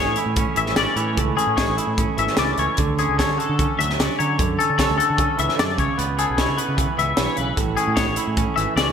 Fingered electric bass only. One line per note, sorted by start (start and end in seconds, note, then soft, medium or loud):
0.07 0.16 A2 medium
0.26 0.44 A2 medium
0.56 0.74 A1 medium
0.76 0.85 G#1 medium
0.96 1.14 A2 medium
1.18 1.35 C#2 medium
1.47 1.65 A2 medium
1.68 1.77 A1 medium
1.87 2.05 A2 medium
2.18 2.27 G#1 medium
2.38 2.55 C#2 medium
2.58 2.67 C#2 medium
2.78 3.04 D2 medium
3.09 3.26 C#2 medium
3.28 3.37 D3 medium
3.49 3.66 D3 medium
3.79 3.96 D2 medium
3.99 4.08 C#2 medium
4.20 4.37 D3 medium
4.39 4.56 F#2 medium
4.70 4.87 D3 medium
4.90 4.98 D2 medium
5.10 5.27 D3 medium
5.39 5.47 C#2 medium
5.59 5.76 F#2 medium
5.78 5.87 C#2 medium
5.99 6.24 C#2 medium
6.30 6.46 B1 medium
6.49 6.57 C#3 medium
6.69 6.86 C#3 medium
6.98 7.15 C#2 medium
7.18 7.27 B1 medium
7.38 7.55 B1 medium
7.57 7.75 A1 medium
7.88 8.05 A2 medium
8.08 8.16 A1 medium
8.27 8.45 A2 medium
8.58 8.66 G#1 medium
8.76 8.92 C#2 medium